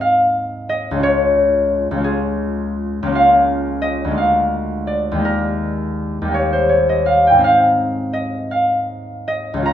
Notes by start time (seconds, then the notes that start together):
Already playing: G#2 C4 D#4 G#4 D#5
0.01 F5
0.69 D#5
0.91 C#2 G#3
0.97 C#4 F4
1.03 C#5
1.91 C#2 G#3
1.98 C#4 F4
2.04 G#4
3.03 C#2 A#3
3.09 C#4 F4
3.15 F5
3.82 D#5
4.04 D2 G#3
4.11 A#3 F4
4.17 F5
4.87 D5
5.12 D#2 G#3
5.19 A#3 D#4
5.25 A#4
6.22 D#2 G3
6.28 A#3 D#4
6.34 C#5
6.53 C5
6.69 C#5
6.89 D#5
7.06 F5
7.27 G5
7.31 G#2 G#3
7.38 C4 D#4
7.44 F5
8.13 D#5
8.51 F5
9.28 D#5
9.54 C#2 G#3
9.60 C#4 F4
9.66 A#5